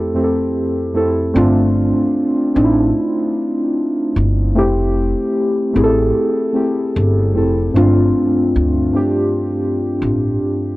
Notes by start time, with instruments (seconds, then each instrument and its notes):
Already playing: synth keys F2 A3 C4 E4 G4 A4
0.14 synth keys F2 A3 C4 E4 G4
0.24 synth keys A4
0.93 synth keys F2 A3 C4 E4 A4
1.34 upright bass G1, synth keys A3 C4 D4 F4
2.54 upright bass A1, synth keys A3 C4 D4 D#4
2.64 synth keys E4
4.16 upright bass G1
4.55 upright bass F1, synth keys A3 C4 E4 G4
5.73 upright bass A1, synth keys A3 C4 E4 G#4
5.83 synth keys A4
6.52 synth keys A3 C4 E4 G4
6.96 upright bass G1
7.34 upright bass F1, synth keys A3 C4 E4 A4
7.74 upright bass G1, synth keys G2 A3 C4 D4 F4
8.56 upright bass D2
8.93 synth keys G2 A3 C4 D4 G4
10.02 upright bass A1